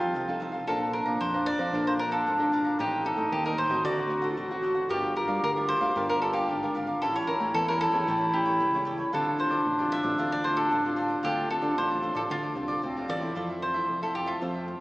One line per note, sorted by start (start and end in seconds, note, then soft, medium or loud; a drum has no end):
0.00 0.16 F2 loud
0.00 0.12 F3 medium
0.00 0.23 C4 medium
0.00 0.23 D#4 medium
0.00 0.40 F4 medium
0.00 0.38 G4 medium
0.00 0.24 A4 medium
0.00 0.14 A4 medium
0.00 0.13 C5 medium
0.00 0.13 F5 medium
0.14 0.59 C2 medium
0.14 0.65 C3 medium
0.14 0.27 D#4 medium
0.14 0.27 A4 medium
0.14 0.27 C5 medium
0.14 0.27 F5 medium
0.28 0.64 C4 medium
0.28 0.64 D#4 medium
0.28 0.64 A4 medium
0.28 0.40 A4 soft
0.28 0.41 C5 soft
0.28 0.40 F5 soft
0.40 0.53 D#4 medium
0.40 0.53 A4 medium
0.40 0.52 C5 medium
0.40 0.51 F5 medium
0.52 0.66 A4 soft
0.52 0.66 C5 soft
0.52 0.65 F5 soft
0.67 1.01 A#1 medium
0.67 1.18 A#3 medium
0.67 0.83 D4 medium
0.67 2.81 D4 medium
0.67 0.92 A4 medium
0.67 0.83 A4 medium
0.67 0.83 C5 medium
0.67 0.93 D5 medium
0.67 0.93 F5 medium
0.67 0.93 A#5 medium
0.93 1.29 D4 medium
0.93 1.29 A4 medium
0.93 1.18 A#4 medium
0.93 1.29 C5 medium
0.93 muted cavaquinho stroke soft
1.06 1.18 A#2 medium
1.06 1.33 D5 medium
1.06 1.32 F5 medium
1.06 1.32 A#5 medium
1.20 1.54 F2 medium
1.20 1.71 F3 medium
1.20 1.48 C5 loud
1.34 1.56 D4 medium
1.34 1.56 A4 medium
1.34 1.56 C5 medium
1.34 1.46 D5 soft
1.34 1.46 F5 soft
1.34 1.46 A#5 medium
1.46 1.59 A4 soft
1.46 1.83 D5 loud
1.46 1.59 D5 medium
1.46 1.59 F5 medium
1.46 1.58 A#5 medium
1.58 1.71 F2 loud
1.58 1.68 D4 medium
1.58 1.68 A4 medium
1.58 1.69 C5 medium
1.58 1.73 D5 medium
1.58 1.72 F5 medium
1.58 1.72 A#5 medium
1.73 2.28 A#1 loud
1.73 2.23 A#3 medium
1.73 1.95 D4 medium
1.73 1.85 A4 medium
1.73 1.95 A4 medium
1.73 1.96 C5 medium
1.73 1.86 D5 medium
1.73 1.86 F5 medium
1.73 1.86 A#5 medium
1.87 1.92 C5 medium
1.87 1.98 D5 soft
1.87 1.99 F5 soft
1.87 1.99 A#5 soft
1.99 2.24 D4 medium
1.99 2.24 A4 medium
1.99 2.11 A#4 medium
1.99 2.24 C5 medium
1.99 muted cavaquinho stroke soft
2.11 2.49 A4 medium
2.11 2.25 D5 medium
2.11 2.25 F5 medium
2.11 2.24 A#5 medium
2.26 2.71 G#1 loud
2.26 2.76 F3 medium
2.26 2.38 A4 medium
2.26 2.39 D5 medium
2.26 2.39 F5 medium
2.26 2.39 A#5 medium
2.39 2.75 D4 medium
2.39 2.75 A4 medium
2.39 2.75 C5 medium
2.39 2.52 D5 soft
2.39 2.52 F5 soft
2.39 2.52 A#5 soft
2.52 2.64 A4 medium
2.52 2.65 D5 medium
2.52 2.64 F5 medium
2.52 2.63 A#5 medium
2.64 2.78 D5 soft
2.64 2.78 F5 soft
2.64 2.77 A#5 soft
2.79 3.13 A1 loud
2.79 3.29 A2 medium
2.79 3.01 G3 medium
2.79 3.01 C4 medium
2.79 3.86 D#4 loud
2.79 3.02 D#4 medium
2.79 3.05 G4 medium
2.79 3.03 A4 medium
2.79 3.04 C5 medium
2.79 3.04 D#5 medium
2.79 3.04 G5 medium
3.04 3.40 G3 medium
3.04 3.41 C4 medium
3.04 3.41 D#4 medium
3.04 3.30 A4 medium
3.04 muted cavaquinho stroke soft
3.16 3.29 A2 medium
3.16 3.44 C5 medium
3.16 3.43 D#5 medium
3.16 3.43 G5 medium
3.32 3.66 D#2 loud
3.32 3.82 A2 medium
3.32 3.44 G4 medium
3.45 3.68 G3 medium
3.45 3.68 C4 medium
3.45 3.68 D#4 medium
3.45 3.58 A#4 medium
3.45 3.57 C5 soft
3.45 3.58 D#5 soft
3.45 3.57 G5 medium
3.57 3.70 A4 medium
3.57 3.84 C5 loud
3.57 3.70 C5 medium
3.57 3.69 D#5 medium
3.57 3.68 G5 medium
3.69 3.82 A1 medium
3.69 4.06 A3 medium
3.69 4.06 C4 medium
3.69 4.06 F#4 medium
3.69 3.84 C5 medium
3.69 3.83 D#5 medium
3.69 3.83 G5 medium
3.84 4.39 D2 loud
3.84 4.35 D3 medium
3.84 3.97 D4 medium
3.84 4.30 F#4 medium
3.84 3.97 A4 medium
3.84 3.97 C5 medium
3.84 4.60 D5 loud
3.84 3.97 F#5 medium
3.99 4.09 A4 soft
3.99 4.10 C5 soft
3.99 4.10 F#5 soft
4.10 4.46 A3 soft
4.10 4.46 C4 medium
4.10 4.46 F#4 medium
4.10 muted cavaquinho stroke soft
4.22 4.36 A4 medium
4.22 4.36 C5 medium
4.22 4.35 F#5 medium
4.30 4.39 F4 medium
4.37 4.82 A1 medium
4.37 4.88 A2 medium
4.37 4.49 D4 medium
4.37 4.89 F#4 loud
4.37 4.50 A4 medium
4.37 4.50 C5 medium
4.37 4.49 F#5 medium
4.51 4.86 A3 medium
4.51 4.86 C4 medium
4.51 4.87 F#4 medium
4.51 4.62 A4 soft
4.51 4.62 C5 soft
4.51 4.63 F#5 soft
4.62 4.75 D4 medium
4.62 4.75 A4 medium
4.62 4.74 C5 medium
4.62 4.74 F#5 medium
4.75 4.89 A4 soft
4.75 4.88 C5 soft
4.75 4.88 F#5 medium
4.89 5.24 G1 loud
4.89 5.40 G3 medium
4.89 5.12 D4 medium
4.89 5.13 F4 medium
4.89 5.14 G4 medium
4.89 6.70 G4 loud
4.89 5.16 G4 medium
4.89 5.14 A#4 medium
4.89 5.13 A#4 medium
4.89 5.15 D5 medium
4.89 5.15 F5 medium
5.16 5.41 D4 medium
5.16 5.41 F4 medium
5.16 5.42 A#4 medium
5.16 5.41 A#4 medium
5.16 muted cavaquinho stroke soft
5.28 5.40 G2 medium
5.28 5.55 A#4 medium
5.28 5.55 D5 medium
5.28 5.54 F5 medium
5.43 5.77 D2 medium
5.43 5.93 D3 medium
5.43 5.51 A#4 medium
5.56 5.79 D4 medium
5.56 5.79 F4 medium
5.56 5.79 A#4 medium
5.56 5.68 A#4 soft
5.56 5.69 D5 soft
5.56 5.68 F5 medium
5.68 5.81 G4 medium
5.68 5.81 A#4 medium
5.68 6.06 C5 loud
5.68 5.81 D5 medium
5.68 5.80 F5 medium
5.81 5.93 D2 loud
5.81 5.91 D4 medium
5.81 5.91 F4 medium
5.81 5.91 A#4 medium
5.81 5.95 A#4 medium
5.81 5.95 D5 medium
5.81 5.94 F5 medium
5.96 6.50 G1 loud
5.96 6.46 G3 medium
5.96 6.18 D4 medium
5.96 6.18 F4 medium
5.96 6.08 G4 medium
5.96 6.08 A#4 medium
5.96 6.19 A#4 medium
5.96 6.09 D5 medium
5.96 6.08 F5 medium
6.09 6.21 A#4 medium
6.09 6.21 A#4 soft
6.09 6.21 D5 soft
6.09 6.22 F5 medium
6.22 6.57 D4 medium
6.22 6.58 F4 medium
6.22 6.33 A4 medium
6.22 6.58 A#4 medium
6.22 muted cavaquinho stroke soft
6.33 6.71 G4 medium
6.33 6.48 A#4 medium
6.33 6.47 D5 medium
6.33 6.47 F5 medium
6.49 6.94 G#1 loud
6.49 6.99 D3 medium
6.49 6.61 G4 soft
6.49 6.61 A#4 medium
6.49 6.62 D5 medium
6.49 6.62 F5 medium
6.63 6.98 D4 medium
6.63 6.98 F4 medium
6.63 6.98 A#4 medium
6.63 6.74 A#4 soft
6.63 6.75 D5 soft
6.63 6.75 F5 soft
6.75 6.87 G4 medium
6.75 6.87 A#4 medium
6.75 6.87 D5 medium
6.75 6.86 F5 medium
6.87 7.01 A#4 soft
6.87 7.00 D5 medium
6.87 7.00 F5 soft
7.01 7.35 A1 medium
7.01 7.52 A2 medium
7.01 7.24 G3 medium
7.01 7.24 C#4 medium
7.01 9.09 E4 loud
7.01 7.24 E4 medium
7.01 7.26 G4 medium
7.01 7.14 A4 medium
7.01 7.27 A4 medium
7.01 7.27 C#5 medium
7.01 7.27 G5 medium
7.16 7.29 C#5 medium
7.27 7.53 G3 medium
7.27 7.53 C#4 medium
7.27 7.53 E4 medium
7.27 7.52 A#4 medium
7.27 muted cavaquinho stroke soft
7.40 7.52 A2 medium
7.40 7.67 A4 medium
7.40 7.66 C#5 medium
7.40 7.66 G5 medium
7.54 7.88 E2 loud
7.54 8.05 E3 medium
7.54 7.68 A4 medium
7.68 7.90 G3 medium
7.68 7.90 C#4 medium
7.68 7.90 E4 medium
7.68 7.80 A4 soft
7.68 7.80 A#4 medium
7.68 7.80 C#5 soft
7.68 7.80 G5 soft
7.80 7.93 G4 medium
7.80 8.35 A4 medium
7.80 7.93 A4 medium
7.80 7.92 C#5 medium
7.80 7.91 G5 medium
7.93 8.05 E2 loud
7.93 8.02 G3 medium
7.93 8.02 C#4 medium
7.93 8.03 E4 medium
7.93 8.06 A4 medium
7.93 8.06 C#5 medium
7.93 8.05 G5 medium
8.07 8.62 A1 loud
8.07 8.57 A2 medium
8.07 8.23 G3 medium
8.07 8.23 C#4 medium
8.07 8.23 E4 medium
8.07 8.19 G4 medium
8.07 8.20 A4 medium
8.07 8.20 C#5 medium
8.07 8.20 G5 medium
8.21 8.33 A4 soft
8.21 8.33 C#5 soft
8.21 8.33 G5 soft
8.33 8.69 G3 medium
8.33 8.69 C#4 medium
8.33 8.69 E4 medium
8.33 8.83 G4 medium
8.33 muted cavaquinho stroke soft
8.45 8.59 A4 medium
8.45 8.59 C#5 medium
8.45 8.58 G5 medium
8.60 9.05 C#2 loud
8.60 9.11 E3 medium
8.60 8.72 G4 medium
8.60 8.72 A4 medium
8.60 8.73 C#5 medium
8.60 8.72 G5 medium
8.74 9.09 G3 medium
8.74 9.09 C#4 medium
8.74 9.09 E4 medium
8.74 8.85 A4 soft
8.74 8.85 C#5 soft
8.74 8.86 G5 soft
8.85 8.98 G4 medium
8.85 8.98 A4 medium
8.85 8.98 C#5 medium
8.85 8.97 G5 medium
8.98 9.12 A4 soft
8.98 9.11 C#5 soft
8.98 9.11 G5 soft
9.13 9.47 D2 medium
9.13 9.63 D3 medium
9.13 9.29 G3 medium
9.13 9.29 C4 medium
9.13 12.52 D4 loud
9.13 9.37 F4 medium
9.13 9.29 F4 medium
9.13 9.37 A4 medium
9.13 9.41 A4 medium
9.13 9.38 C5 medium
9.13 9.38 D5 medium
9.38 9.64 G3 medium
9.38 9.64 C4 medium
9.38 9.64 F4 medium
9.38 9.94 C5 medium
9.38 muted cavaquinho stroke soft
9.51 9.63 D3 medium
9.51 9.78 A4 medium
9.51 9.78 C5 medium
9.51 9.77 D5 medium
9.66 10.00 A1 medium
9.66 10.16 A2 medium
9.79 10.02 G3 medium
9.79 10.02 C4 medium
9.79 10.02 F4 medium
9.79 9.90 A4 soft
9.79 9.91 C5 soft
9.79 9.91 D5 medium
9.91 10.04 F4 soft
9.91 10.04 A4 medium
9.91 10.03 C5 medium
9.91 10.02 D5 medium
9.91 10.29 E5 loud
10.03 10.16 A1 loud
10.03 10.14 G3 medium
10.03 10.14 C4 medium
10.03 10.14 F4 medium
10.03 10.17 A4 medium
10.03 10.17 C5 medium
10.03 10.16 D5 medium
10.18 10.73 D2 loud
10.18 10.69 D3 medium
10.18 10.41 G3 medium
10.18 10.41 C4 medium
10.18 10.30 F4 medium
10.18 10.41 F4 medium
10.18 10.31 A4 medium
10.18 10.31 C5 medium
10.18 10.30 D5 medium
10.31 10.43 A4 soft
10.31 10.43 C5 soft
10.31 10.43 D5 soft
10.31 10.44 D5 medium
10.44 10.70 G3 medium
10.44 10.70 C4 medium
10.44 10.70 F4 medium
10.44 10.57 C5 medium
10.44 muted cavaquinho stroke soft
10.56 10.94 A4 medium
10.56 10.70 A4 medium
10.56 10.70 C5 medium
10.56 10.69 D5 medium
10.71 11.17 A1 loud
10.71 11.22 A2 medium
10.71 10.83 F4 medium
10.71 10.84 A4 medium
10.71 10.84 C5 medium
10.71 10.84 D5 medium
10.85 11.20 G3 medium
10.85 11.21 C4 medium
10.85 11.21 F4 medium
10.85 10.96 A4 soft
10.85 10.96 C5 soft
10.85 10.97 D5 soft
10.96 11.09 F4 medium
10.96 11.10 A4 medium
10.96 11.08 C5 medium
10.96 11.07 D5 medium
11.08 11.22 A4 soft
11.08 11.22 C5 soft
11.08 11.22 D5 soft
11.23 11.58 D2 loud
11.23 11.75 D3 medium
11.23 11.47 G3 medium
11.23 11.47 C4 medium
11.23 11.48 F4 medium
11.23 11.47 F4 medium
11.23 11.49 G4 medium
11.23 11.49 A4 medium
11.23 11.49 C5 medium
11.23 11.50 D5 medium
11.50 11.86 G3 medium
11.50 11.86 C4 medium
11.50 11.86 F4 medium
11.50 11.75 A4 medium
11.50 muted cavaquinho stroke soft
11.62 11.74 D3 medium
11.62 11.89 A4 medium
11.62 11.89 C5 medium
11.62 11.88 D5 medium
11.77 12.11 A1 loud
11.77 12.28 A2 medium
11.77 12.14 C5 loud
11.90 12.39 G3 medium
11.90 12.39 C4 medium
11.90 12.40 F4 medium
11.90 12.02 A4 soft
11.90 12.02 C5 soft
11.90 12.02 D5 medium
12.02 12.15 F4 soft
12.02 12.15 A4 medium
12.02 12.15 C5 medium
12.02 12.14 D5 medium
12.15 12.27 A1 medium
12.15 12.21 A4 medium
12.15 12.29 A4 medium
12.15 12.29 C5 medium
12.15 12.28 D5 medium
12.30 12.55 D2 loud
12.30 12.80 D3 medium
12.30 12.42 F4 medium
12.30 13.06 F4 medium
12.30 12.42 A4 medium
12.30 12.43 C5 medium
12.30 12.42 D5 medium
12.43 12.55 A4 soft
12.43 12.55 C5 soft
12.43 12.55 D5 soft
12.56 12.80 C2 loud
12.56 12.81 G3 soft
12.56 12.81 C4 medium
12.56 12.81 F4 medium
12.56 muted cavaquinho stroke soft
12.68 12.82 A4 medium
12.68 12.82 C5 medium
12.68 12.81 D5 medium
12.82 13.07 D2 medium
12.82 13.33 A2 medium
12.82 13.32 C4 medium
12.82 12.95 F4 medium
12.82 12.95 A4 medium
12.82 12.95 C5 medium
12.82 12.95 D5 medium
12.97 13.19 G3 medium
12.97 13.19 C4 medium
12.97 13.19 F4 medium
12.97 13.08 A4 soft
12.97 13.08 C5 soft
12.97 13.09 D5 soft
13.08 13.33 E2 medium
13.08 13.21 F4 medium
13.08 13.21 A4 medium
13.08 13.20 C5 medium
13.08 13.62 D5 loud
13.08 13.20 D5 medium
13.21 13.57 A3 medium
13.21 13.58 C4 medium
13.21 13.58 E4 medium
13.21 13.35 A4 soft
13.21 13.34 C5 soft
13.21 13.34 D5 soft
13.35 13.81 F2 medium
13.35 13.86 F3 medium
13.35 13.48 F4 medium
13.35 13.48 A4 medium
13.35 13.48 C5 medium
13.35 13.48 E5 medium
13.50 13.75 A4 soft
13.50 13.74 C5 soft
13.50 13.73 E5 soft
13.62 13.99 C5 medium
13.74 13.97 A3 medium
13.74 13.98 C4 medium
13.74 13.98 E4 medium
13.74 14.01 A4 soft
13.74 14.01 C5 medium
13.74 14.00 E5 medium
13.89 14.34 F2 medium
13.89 14.39 C3 medium
14.02 14.38 A3 medium
14.02 14.38 C4 medium
14.02 14.38 E4 medium
14.02 14.15 A4 medium
14.02 14.13 A4 soft
14.02 14.14 C5 soft
14.02 14.14 E5 soft
14.14 14.27 F4 medium
14.14 14.27 G4 medium
14.14 14.27 A4 soft
14.14 14.26 C5 medium
14.14 14.25 E5 medium
14.26 14.80 F4 medium
14.26 14.41 A4 soft
14.26 14.40 C5 medium
14.26 14.40 E5 medium
14.41 14.76 F2 loud
14.41 14.80 F3 medium
14.41 14.77 A3 medium
14.41 14.77 C4 medium
14.41 14.54 F4 medium
14.41 14.54 A4 medium
14.41 14.54 C5 medium
14.41 14.53 E5 medium
14.54 14.66 A4 soft
14.54 14.67 C5 soft
14.54 14.67 E5 soft
14.67 muted cavaquinho stroke soft